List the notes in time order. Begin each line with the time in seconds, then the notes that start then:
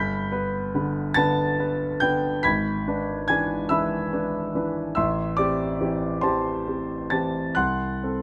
Already playing: G1 B5 G6 B6
0.32 B3 B4
0.75 D3 B3 B4
1.14 D3 B3 B4 A5 A6
1.59 B3 B4
2.00 D3 B3 B4 G5 G6
2.43 G#1 B5 G#6 B6
2.88 D4 B4
3.28 E3 D4 B4 G#5 G#6
3.69 E3 D4 B4 E5 B5 E6
4.13 D4 B4
4.55 E3 D4 B4
4.95 A1 E5 C6 E6
5.37 C4 G4 D5 D6
5.81 E3 C4 G4
6.21 E3 C4 G4 C5 A5 C6
6.68 C4 G4
7.10 E3 C4 G4 A5 A6
7.55 C2 F#5 C6 F#6
8.03 C4 A4